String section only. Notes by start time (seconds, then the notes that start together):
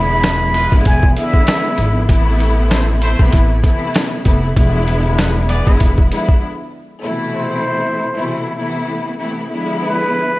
Already playing: D3 F3 G#3 B3 E4
0.70 D3 F3 G#3 B3 E4
1.16 D3 F3 G#3 B3 E4
2.07 C3 E3 A3 B3 E4
3.19 C3 E3 A3 B3 E4
3.63 C3 E3 A3 B3 E4
4.24 C3 E3 A3 B3 E4
4.55 D3 F3 G#3 B3 E4
5.65 D3 F3 G#3 B3 E4
6.11 D3 F3 G#3 B3 E4
7.02 B2 C3 E3 A3 E4
8.14 B2 C3 E3 A3 E4
8.58 C3 E3 A3 B3 E4
9.19 C3 E3 A3 B3 E4
9.50 D3 F3 G#3 B3 E4